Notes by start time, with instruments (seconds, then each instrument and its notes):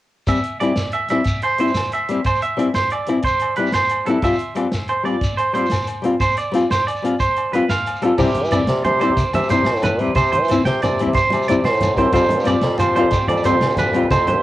0.27 nylon-string guitar G3 C4, clean electric guitar E5, muted nylon-string guitar stroke, kick, closed hi-hat, low agogo, shekere
0.35 shekere
0.43 closed hi-hat
0.60 nylon-string guitar G3 C4 E4, clean electric guitar D5, closed hi-hat, low agogo
0.75 snare, closed hi-hat, shekere
0.91 clean electric guitar E5, closed hi-hat, low agogo
1.08 nylon-string guitar G3 C4 E4, clean electric guitar E5, snare, closed hi-hat, low agogo
1.24 kick, closed hi-hat, shekere
1.42 clean electric guitar C5, closed hi-hat, low agogo
1.58 nylon-string guitar G3 C4 E4, clean electric guitar C5, closed hi-hat
1.68 shekere
1.74 snare, closed hi-hat, low agogo, shekere
1.84 shekere
1.92 clean electric guitar E5, closed hi-hat, low agogo
2.08 nylon-string guitar G3 C4 E4, closed hi-hat
2.24 clean electric guitar C5, kick, closed hi-hat, low agogo, shekere
2.35 shekere
2.42 clean electric guitar E5, closed hi-hat
2.57 nylon-string guitar G3 C4 E4, closed hi-hat, low agogo
2.74 clean electric guitar C5, snare, closed hi-hat, shekere
2.90 clean electric guitar D5, closed hi-hat, low agogo
3.06 nylon-string guitar G3 C4 E4, closed hi-hat, low agogo
3.22 clean electric guitar C5, kick, closed hi-hat, shekere
3.39 closed hi-hat, low agogo
3.56 nylon-string guitar G3 C4, clean electric guitar B4, closed hi-hat
3.60 nylon-string guitar E4
3.66 shekere
3.72 clean electric guitar C5, snare, closed hi-hat, low agogo, shekere
3.84 shekere
3.89 closed hi-hat, low agogo
4.06 nylon-string guitar G3 C4 E4, clean electric guitar A4, closed hi-hat
4.22 nylon-string guitar G3 C4 F4, clean electric guitar E5, kick, closed hi-hat, low agogo, shekere
4.33 shekere
4.39 closed hi-hat
4.55 nylon-string guitar G3 C4 F4, muted clean electric guitar stroke, closed hi-hat, low agogo
4.72 snare, closed hi-hat, shekere
4.88 clean electric guitar C5, closed hi-hat, low agogo
5.03 nylon-string guitar G3 C4 F4, clean electric guitar D5, closed hi-hat, low agogo
5.21 kick, closed hi-hat, shekere
5.37 clean electric guitar C5, closed hi-hat, low agogo
5.53 nylon-string guitar G3 C4 F4, clean electric guitar C5, closed hi-hat
5.66 snare, closed hi-hat, shekere
5.72 low agogo, shekere
5.82 shekere
5.87 closed hi-hat, low agogo
6.02 nylon-string guitar G3 C4 F4, closed hi-hat
6.20 clean electric guitar C5, kick, closed hi-hat, low agogo, shekere
6.31 shekere
6.37 clean electric guitar D5, closed hi-hat, shekere
6.52 nylon-string guitar G3 C4 F4, closed hi-hat, low agogo
6.56 shekere
6.70 clean electric guitar C5, snare, closed hi-hat, shekere
6.87 clean electric guitar D5, closed hi-hat, low agogo, shekere
6.96 shekere
7.02 nylon-string guitar G3 C4 F4, closed hi-hat, low agogo
7.20 clean electric guitar C5, kick, closed hi-hat, shekere
7.36 closed hi-hat, low agogo
7.53 nylon-string guitar G3 C4 F4, clean electric guitar B4, closed hi-hat
7.69 clean electric guitar F5, snare, closed hi-hat, low agogo, shekere
7.86 closed hi-hat, low agogo, shekere
7.96 shekere
8.02 nylon-string guitar G3 C4 F4, clean electric guitar A4, closed hi-hat
8.18 bassoon C3, nylon-string guitar G3 C4 E4, clean electric guitar G4, kick, crash, high conga, low agogo, shekere
8.27 low conga, shekere
8.35 closed hi-hat, low conga
8.44 bassoon E3, shekere
8.51 nylon-string guitar G3 C4 E4, clean electric guitar D5, closed hi-hat, low agogo, shekere
8.59 low conga
8.67 bassoon C3, snare, closed hi-hat, high conga, low conga
8.84 bassoon C3, clean electric guitar C5, closed hi-hat, low conga, low agogo
8.99 nylon-string guitar G3 C4 E4, clean electric guitar C5, closed hi-hat, low conga, low agogo
9.10 bassoon C3, low conga
9.17 kick, closed hi-hat, high conga, shekere
9.33 bassoon C3, clean electric guitar E5, closed hi-hat, low conga, low agogo, shekere
9.43 shekere
9.49 bassoon C3, nylon-string guitar G3 C4 E4, clean electric guitar C5, closed hi-hat, shekere
9.59 low conga
9.65 snare, closed hi-hat, high conga, low agogo
9.76 bassoon A2, shekere
9.82 clean electric guitar B4, closed hi-hat, low conga, low agogo, shekere
9.99 bassoon C3, nylon-string guitar G3 C4 E4, closed hi-hat
10.08 low conga
10.15 bassoon C3, clean electric guitar C5, kick, closed hi-hat, high conga, low agogo, shekere
10.25 low conga, shekere
10.32 clean electric guitar C5, closed hi-hat, low conga
10.42 bassoon E3, shekere
10.48 nylon-string guitar C4, muted nylon-string guitar stroke, closed hi-hat, low agogo, shekere
10.52 nylon-string guitar E4
10.58 low conga
10.65 bassoon C3, clean electric guitar G5, snare, closed hi-hat, high conga, low conga
10.82 bassoon C3, clean electric guitar D5, closed hi-hat, low conga, low agogo, shekere
10.98 nylon-string guitar G3 C4 E4, closed hi-hat, low conga, low agogo
11.06 bassoon C3, low conga
11.13 clean electric guitar C5, kick, closed hi-hat, high conga, shekere
11.30 bassoon C3, closed hi-hat, low conga, low agogo, shekere
11.42 shekere
11.48 bassoon C3, nylon-string guitar G3 C4 E4, clean electric guitar D5, closed hi-hat, shekere
11.55 low conga
11.64 clean electric guitar C5, snare, closed hi-hat, high conga, low agogo
11.72 bassoon A2, shekere
11.80 closed hi-hat, low conga, low agogo, shekere
11.97 bassoon F#2, nylon-string guitar G3 C4 E4, clean electric guitar C5, kick, closed hi-hat
12.05 low conga
12.12 bassoon F2, nylon-string guitar G3 C4 F4, tonewheel organ C4 F4 G4, clean electric guitar C5, kick, closed hi-hat, high conga, low agogo, shekere
12.22 low conga, shekere
12.29 closed hi-hat, low conga
12.39 bassoon G2, shekere
12.44 nylon-string guitar G3 C4 F4, clean electric guitar D5, closed hi-hat, shekere
12.48 low agogo
12.54 low conga
12.61 bassoon F2, snare, closed hi-hat, high conga, low conga
12.78 bassoon F3, clean electric guitar C5, closed hi-hat, low conga, low agogo, shekere
12.95 nylon-string guitar G3 C4 F4, clean electric guitar C5, closed hi-hat, low conga, low agogo
13.04 bassoon F2, low conga
13.11 kick, closed hi-hat, high conga, shekere
13.28 bassoon F2, clean electric guitar D5, closed hi-hat, low conga, low agogo
13.37 shekere
13.43 bassoon F2, nylon-string guitar G3 C4 F4, clean electric guitar C5, closed hi-hat, shekere
13.52 low conga
13.61 snare, closed hi-hat, high conga, low agogo
13.70 bassoon D2, shekere
13.76 clean electric guitar B4, closed hi-hat, low conga, low agogo, shekere
13.93 bassoon F2, nylon-string guitar G3 C4 F4, closed hi-hat
14.03 low conga
14.10 bassoon F2, tonewheel organ E4, clean electric guitar C5, kick, closed hi-hat, high conga, low agogo, shekere
14.27 clean electric guitar C5, closed hi-hat, low conga
14.36 bassoon G2